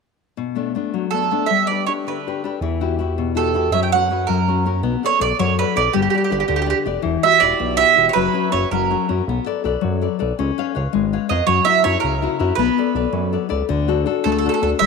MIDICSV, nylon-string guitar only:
0, 0, Header, 1, 2, 480
1, 0, Start_track
1, 0, Key_signature, 2, "minor"
1, 0, Tempo, 372439
1, 490, Time_signature, 6, 3, 24, 8
1, 6725, Tempo, 368324
1, 19296, End_track
2, 0, Start_track
2, 0, Title_t, "Nylon-string guitar"
2, 0, Program_c, 0, 24
2, 480, Note_on_c, 0, 47, 45
2, 714, Note_on_c, 0, 57, 32
2, 724, Note_on_c, 0, 62, 39
2, 727, Note_on_c, 0, 59, 32
2, 949, Note_off_c, 0, 57, 0
2, 956, Note_off_c, 0, 47, 0
2, 959, Note_off_c, 0, 59, 0
2, 964, Note_off_c, 0, 62, 0
2, 965, Note_on_c, 0, 57, 33
2, 977, Note_on_c, 0, 59, 28
2, 978, Note_on_c, 0, 62, 35
2, 1207, Note_on_c, 0, 54, 40
2, 1356, Note_off_c, 0, 57, 0
2, 1362, Note_off_c, 0, 59, 0
2, 1364, Note_off_c, 0, 62, 0
2, 1454, Note_on_c, 0, 57, 28
2, 1468, Note_on_c, 0, 59, 30
2, 1473, Note_on_c, 0, 62, 32
2, 1673, Note_off_c, 0, 59, 0
2, 1678, Note_off_c, 0, 54, 0
2, 1679, Note_off_c, 0, 57, 0
2, 1683, Note_off_c, 0, 62, 0
2, 1688, Note_on_c, 0, 59, 30
2, 1693, Note_on_c, 0, 57, 37
2, 1702, Note_on_c, 0, 62, 40
2, 1880, Note_off_c, 0, 59, 0
2, 1884, Note_off_c, 0, 57, 0
2, 1886, Note_off_c, 0, 62, 0
2, 1938, Note_on_c, 0, 55, 46
2, 2193, Note_on_c, 0, 62, 34
2, 2200, Note_on_c, 0, 67, 36
2, 2208, Note_on_c, 0, 71, 36
2, 2403, Note_off_c, 0, 55, 0
2, 2403, Note_off_c, 0, 62, 0
2, 2414, Note_off_c, 0, 67, 0
2, 2418, Note_off_c, 0, 71, 0
2, 2418, Note_on_c, 0, 62, 33
2, 2428, Note_on_c, 0, 67, 30
2, 2436, Note_on_c, 0, 71, 38
2, 2664, Note_on_c, 0, 50, 38
2, 2802, Note_off_c, 0, 62, 0
2, 2808, Note_off_c, 0, 67, 0
2, 2810, Note_off_c, 0, 71, 0
2, 2925, Note_on_c, 0, 62, 31
2, 2934, Note_on_c, 0, 67, 29
2, 2937, Note_on_c, 0, 71, 39
2, 3123, Note_off_c, 0, 50, 0
2, 3129, Note_off_c, 0, 62, 0
2, 3144, Note_off_c, 0, 67, 0
2, 3144, Note_off_c, 0, 71, 0
2, 3144, Note_on_c, 0, 62, 41
2, 3158, Note_on_c, 0, 67, 37
2, 3162, Note_on_c, 0, 71, 39
2, 3325, Note_off_c, 0, 62, 0
2, 3334, Note_off_c, 0, 67, 0
2, 3334, Note_off_c, 0, 71, 0
2, 3378, Note_on_c, 0, 52, 62
2, 3619, Note_on_c, 0, 66, 35
2, 3623, Note_on_c, 0, 64, 41
2, 3624, Note_on_c, 0, 67, 42
2, 3833, Note_off_c, 0, 64, 0
2, 3836, Note_off_c, 0, 52, 0
2, 3845, Note_off_c, 0, 66, 0
2, 3849, Note_on_c, 0, 64, 34
2, 3859, Note_off_c, 0, 67, 0
2, 3861, Note_on_c, 0, 66, 32
2, 3875, Note_on_c, 0, 67, 35
2, 4097, Note_on_c, 0, 47, 50
2, 4232, Note_off_c, 0, 64, 0
2, 4239, Note_off_c, 0, 66, 0
2, 4247, Note_off_c, 0, 67, 0
2, 4317, Note_on_c, 0, 64, 35
2, 4329, Note_on_c, 0, 66, 32
2, 4334, Note_on_c, 0, 67, 40
2, 4548, Note_off_c, 0, 64, 0
2, 4556, Note_off_c, 0, 47, 0
2, 4556, Note_off_c, 0, 66, 0
2, 4564, Note_on_c, 0, 64, 42
2, 4570, Note_off_c, 0, 67, 0
2, 4572, Note_on_c, 0, 66, 32
2, 4586, Note_on_c, 0, 67, 47
2, 4751, Note_off_c, 0, 64, 0
2, 4756, Note_off_c, 0, 66, 0
2, 4764, Note_off_c, 0, 67, 0
2, 4815, Note_on_c, 0, 54, 53
2, 5077, Note_on_c, 0, 61, 40
2, 5083, Note_on_c, 0, 71, 46
2, 5085, Note_on_c, 0, 66, 40
2, 5276, Note_off_c, 0, 61, 0
2, 5277, Note_off_c, 0, 54, 0
2, 5284, Note_off_c, 0, 66, 0
2, 5291, Note_on_c, 0, 61, 39
2, 5294, Note_off_c, 0, 71, 0
2, 5299, Note_on_c, 0, 66, 35
2, 5310, Note_on_c, 0, 71, 41
2, 5478, Note_off_c, 0, 61, 0
2, 5483, Note_off_c, 0, 66, 0
2, 5489, Note_off_c, 0, 71, 0
2, 5524, Note_on_c, 0, 54, 53
2, 5771, Note_on_c, 0, 61, 39
2, 5778, Note_on_c, 0, 66, 30
2, 5784, Note_on_c, 0, 70, 38
2, 5987, Note_off_c, 0, 61, 0
2, 5988, Note_off_c, 0, 66, 0
2, 5995, Note_off_c, 0, 54, 0
2, 5996, Note_off_c, 0, 70, 0
2, 6002, Note_on_c, 0, 61, 36
2, 6008, Note_on_c, 0, 66, 31
2, 6012, Note_on_c, 0, 70, 47
2, 6194, Note_off_c, 0, 61, 0
2, 6195, Note_off_c, 0, 66, 0
2, 6200, Note_off_c, 0, 70, 0
2, 6227, Note_on_c, 0, 59, 58
2, 6493, Note_on_c, 0, 69, 44
2, 6503, Note_on_c, 0, 74, 47
2, 6506, Note_off_c, 0, 59, 0
2, 6512, Note_on_c, 0, 71, 38
2, 6685, Note_off_c, 0, 69, 0
2, 6688, Note_off_c, 0, 71, 0
2, 6694, Note_off_c, 0, 74, 0
2, 6698, Note_on_c, 0, 69, 37
2, 6709, Note_on_c, 0, 71, 32
2, 6710, Note_on_c, 0, 74, 36
2, 6950, Note_on_c, 0, 54, 54
2, 7100, Note_off_c, 0, 69, 0
2, 7102, Note_off_c, 0, 71, 0
2, 7106, Note_off_c, 0, 74, 0
2, 7202, Note_on_c, 0, 69, 40
2, 7210, Note_on_c, 0, 71, 30
2, 7213, Note_on_c, 0, 74, 40
2, 7405, Note_off_c, 0, 71, 0
2, 7411, Note_off_c, 0, 69, 0
2, 7415, Note_off_c, 0, 74, 0
2, 7423, Note_on_c, 0, 71, 38
2, 7426, Note_on_c, 0, 69, 43
2, 7427, Note_off_c, 0, 54, 0
2, 7431, Note_on_c, 0, 74, 49
2, 7621, Note_off_c, 0, 71, 0
2, 7624, Note_off_c, 0, 69, 0
2, 7627, Note_off_c, 0, 74, 0
2, 7662, Note_on_c, 0, 55, 63
2, 7920, Note_on_c, 0, 67, 45
2, 7927, Note_on_c, 0, 71, 36
2, 7935, Note_on_c, 0, 74, 47
2, 8127, Note_off_c, 0, 67, 0
2, 8128, Note_off_c, 0, 71, 0
2, 8136, Note_off_c, 0, 74, 0
2, 8140, Note_off_c, 0, 55, 0
2, 8142, Note_on_c, 0, 67, 46
2, 8146, Note_on_c, 0, 71, 34
2, 8151, Note_on_c, 0, 74, 41
2, 8372, Note_on_c, 0, 50, 55
2, 8536, Note_off_c, 0, 67, 0
2, 8537, Note_off_c, 0, 71, 0
2, 8541, Note_off_c, 0, 74, 0
2, 8603, Note_on_c, 0, 67, 38
2, 8608, Note_on_c, 0, 71, 35
2, 8610, Note_on_c, 0, 74, 46
2, 8846, Note_off_c, 0, 67, 0
2, 8847, Note_off_c, 0, 71, 0
2, 8850, Note_off_c, 0, 74, 0
2, 8852, Note_off_c, 0, 50, 0
2, 8859, Note_on_c, 0, 67, 46
2, 8864, Note_on_c, 0, 71, 42
2, 8870, Note_on_c, 0, 74, 44
2, 9057, Note_off_c, 0, 67, 0
2, 9058, Note_off_c, 0, 71, 0
2, 9059, Note_off_c, 0, 74, 0
2, 9079, Note_on_c, 0, 52, 63
2, 9354, Note_on_c, 0, 64, 45
2, 9360, Note_on_c, 0, 66, 39
2, 9366, Note_on_c, 0, 67, 56
2, 9563, Note_off_c, 0, 52, 0
2, 9573, Note_off_c, 0, 66, 0
2, 9584, Note_off_c, 0, 64, 0
2, 9588, Note_off_c, 0, 67, 0
2, 9589, Note_on_c, 0, 66, 39
2, 9602, Note_on_c, 0, 64, 47
2, 9604, Note_on_c, 0, 67, 39
2, 9825, Note_on_c, 0, 47, 64
2, 9977, Note_off_c, 0, 66, 0
2, 9984, Note_off_c, 0, 64, 0
2, 9986, Note_off_c, 0, 67, 0
2, 10051, Note_on_c, 0, 64, 41
2, 10066, Note_on_c, 0, 66, 39
2, 10069, Note_on_c, 0, 67, 43
2, 10279, Note_off_c, 0, 66, 0
2, 10283, Note_off_c, 0, 64, 0
2, 10293, Note_on_c, 0, 66, 40
2, 10296, Note_off_c, 0, 47, 0
2, 10297, Note_off_c, 0, 67, 0
2, 10301, Note_on_c, 0, 64, 42
2, 10313, Note_on_c, 0, 67, 52
2, 10491, Note_off_c, 0, 66, 0
2, 10494, Note_off_c, 0, 64, 0
2, 10502, Note_off_c, 0, 67, 0
2, 10552, Note_on_c, 0, 54, 70
2, 10786, Note_on_c, 0, 61, 46
2, 10794, Note_on_c, 0, 66, 43
2, 10806, Note_on_c, 0, 71, 48
2, 11010, Note_off_c, 0, 61, 0
2, 11016, Note_off_c, 0, 66, 0
2, 11021, Note_off_c, 0, 71, 0
2, 11024, Note_off_c, 0, 54, 0
2, 11025, Note_on_c, 0, 61, 42
2, 11030, Note_on_c, 0, 66, 31
2, 11040, Note_on_c, 0, 71, 39
2, 11221, Note_off_c, 0, 61, 0
2, 11225, Note_off_c, 0, 66, 0
2, 11228, Note_off_c, 0, 71, 0
2, 11294, Note_on_c, 0, 54, 55
2, 11531, Note_on_c, 0, 61, 35
2, 11537, Note_on_c, 0, 66, 33
2, 11544, Note_on_c, 0, 70, 39
2, 11753, Note_off_c, 0, 66, 0
2, 11754, Note_off_c, 0, 70, 0
2, 11756, Note_off_c, 0, 61, 0
2, 11760, Note_off_c, 0, 54, 0
2, 11770, Note_on_c, 0, 61, 38
2, 11771, Note_on_c, 0, 66, 39
2, 11776, Note_on_c, 0, 70, 47
2, 11958, Note_off_c, 0, 66, 0
2, 11959, Note_off_c, 0, 70, 0
2, 11960, Note_off_c, 0, 61, 0
2, 12032, Note_on_c, 0, 59, 63
2, 12256, Note_on_c, 0, 69, 46
2, 12260, Note_off_c, 0, 59, 0
2, 12265, Note_on_c, 0, 71, 37
2, 12267, Note_on_c, 0, 74, 49
2, 12471, Note_off_c, 0, 69, 0
2, 12486, Note_off_c, 0, 71, 0
2, 12486, Note_off_c, 0, 74, 0
2, 12487, Note_on_c, 0, 69, 39
2, 12501, Note_on_c, 0, 71, 41
2, 12504, Note_on_c, 0, 74, 47
2, 12712, Note_on_c, 0, 54, 51
2, 12879, Note_off_c, 0, 69, 0
2, 12888, Note_off_c, 0, 71, 0
2, 12888, Note_off_c, 0, 74, 0
2, 12976, Note_on_c, 0, 69, 39
2, 12986, Note_on_c, 0, 71, 33
2, 12989, Note_on_c, 0, 74, 38
2, 13188, Note_off_c, 0, 69, 0
2, 13192, Note_off_c, 0, 54, 0
2, 13196, Note_off_c, 0, 71, 0
2, 13202, Note_off_c, 0, 74, 0
2, 13204, Note_on_c, 0, 69, 49
2, 13212, Note_on_c, 0, 71, 43
2, 13218, Note_on_c, 0, 74, 47
2, 13397, Note_off_c, 0, 69, 0
2, 13402, Note_off_c, 0, 71, 0
2, 13405, Note_off_c, 0, 74, 0
2, 13461, Note_on_c, 0, 61, 64
2, 13710, Note_on_c, 0, 71, 53
2, 13717, Note_on_c, 0, 73, 44
2, 13725, Note_on_c, 0, 77, 55
2, 13916, Note_off_c, 0, 71, 0
2, 13923, Note_off_c, 0, 61, 0
2, 13926, Note_off_c, 0, 73, 0
2, 13932, Note_on_c, 0, 71, 41
2, 13936, Note_off_c, 0, 77, 0
2, 13942, Note_on_c, 0, 73, 40
2, 13951, Note_on_c, 0, 77, 41
2, 14167, Note_on_c, 0, 56, 60
2, 14317, Note_off_c, 0, 71, 0
2, 14323, Note_off_c, 0, 73, 0
2, 14329, Note_off_c, 0, 77, 0
2, 14430, Note_on_c, 0, 71, 38
2, 14434, Note_on_c, 0, 73, 35
2, 14435, Note_on_c, 0, 77, 46
2, 14634, Note_off_c, 0, 56, 0
2, 14639, Note_off_c, 0, 71, 0
2, 14640, Note_off_c, 0, 73, 0
2, 14653, Note_off_c, 0, 77, 0
2, 14654, Note_on_c, 0, 71, 47
2, 14656, Note_on_c, 0, 73, 38
2, 14669, Note_on_c, 0, 77, 49
2, 14839, Note_off_c, 0, 71, 0
2, 14839, Note_off_c, 0, 73, 0
2, 14848, Note_off_c, 0, 77, 0
2, 14867, Note_on_c, 0, 54, 64
2, 15121, Note_on_c, 0, 64, 52
2, 15130, Note_on_c, 0, 66, 45
2, 15136, Note_on_c, 0, 70, 54
2, 15339, Note_off_c, 0, 54, 0
2, 15345, Note_off_c, 0, 64, 0
2, 15349, Note_off_c, 0, 70, 0
2, 15351, Note_off_c, 0, 66, 0
2, 15362, Note_on_c, 0, 64, 46
2, 15362, Note_on_c, 0, 70, 47
2, 15367, Note_on_c, 0, 66, 37
2, 15610, Note_on_c, 0, 49, 58
2, 15745, Note_off_c, 0, 64, 0
2, 15748, Note_off_c, 0, 70, 0
2, 15749, Note_off_c, 0, 66, 0
2, 15853, Note_on_c, 0, 64, 41
2, 15861, Note_on_c, 0, 66, 33
2, 15869, Note_on_c, 0, 70, 43
2, 16062, Note_off_c, 0, 64, 0
2, 16068, Note_off_c, 0, 70, 0
2, 16070, Note_off_c, 0, 49, 0
2, 16073, Note_off_c, 0, 66, 0
2, 16078, Note_on_c, 0, 64, 45
2, 16087, Note_on_c, 0, 66, 43
2, 16087, Note_on_c, 0, 70, 51
2, 16265, Note_off_c, 0, 64, 0
2, 16269, Note_off_c, 0, 70, 0
2, 16272, Note_off_c, 0, 66, 0
2, 16333, Note_on_c, 0, 59, 75
2, 16578, Note_on_c, 0, 69, 49
2, 16586, Note_on_c, 0, 71, 41
2, 16593, Note_on_c, 0, 74, 47
2, 16789, Note_off_c, 0, 69, 0
2, 16792, Note_off_c, 0, 59, 0
2, 16795, Note_off_c, 0, 74, 0
2, 16796, Note_off_c, 0, 71, 0
2, 16804, Note_on_c, 0, 69, 41
2, 16809, Note_on_c, 0, 71, 40
2, 16815, Note_on_c, 0, 74, 43
2, 17029, Note_on_c, 0, 54, 50
2, 17192, Note_off_c, 0, 69, 0
2, 17196, Note_off_c, 0, 71, 0
2, 17196, Note_off_c, 0, 74, 0
2, 17291, Note_on_c, 0, 69, 43
2, 17300, Note_on_c, 0, 71, 34
2, 17302, Note_on_c, 0, 74, 35
2, 17488, Note_off_c, 0, 69, 0
2, 17491, Note_off_c, 0, 71, 0
2, 17500, Note_off_c, 0, 74, 0
2, 17503, Note_on_c, 0, 69, 40
2, 17506, Note_off_c, 0, 54, 0
2, 17508, Note_on_c, 0, 71, 39
2, 17516, Note_on_c, 0, 74, 52
2, 17703, Note_off_c, 0, 69, 0
2, 17704, Note_off_c, 0, 71, 0
2, 17710, Note_off_c, 0, 74, 0
2, 17762, Note_on_c, 0, 50, 71
2, 18013, Note_on_c, 0, 66, 47
2, 18018, Note_on_c, 0, 62, 46
2, 18024, Note_on_c, 0, 69, 52
2, 18230, Note_off_c, 0, 66, 0
2, 18233, Note_off_c, 0, 69, 0
2, 18234, Note_off_c, 0, 62, 0
2, 18235, Note_off_c, 0, 50, 0
2, 18244, Note_on_c, 0, 62, 47
2, 18248, Note_on_c, 0, 66, 41
2, 18257, Note_on_c, 0, 69, 57
2, 18509, Note_on_c, 0, 57, 57
2, 18635, Note_off_c, 0, 66, 0
2, 18637, Note_off_c, 0, 69, 0
2, 18638, Note_off_c, 0, 62, 0
2, 18759, Note_on_c, 0, 62, 41
2, 18767, Note_on_c, 0, 66, 42
2, 18770, Note_on_c, 0, 69, 46
2, 18959, Note_off_c, 0, 62, 0
2, 18967, Note_off_c, 0, 57, 0
2, 18973, Note_off_c, 0, 69, 0
2, 18974, Note_on_c, 0, 62, 50
2, 18976, Note_off_c, 0, 66, 0
2, 18990, Note_on_c, 0, 69, 46
2, 18991, Note_on_c, 0, 66, 41
2, 19161, Note_off_c, 0, 62, 0
2, 19169, Note_off_c, 0, 69, 0
2, 19171, Note_off_c, 0, 66, 0
2, 19216, Note_on_c, 0, 55, 61
2, 19296, Note_off_c, 0, 55, 0
2, 19296, End_track
0, 0, End_of_file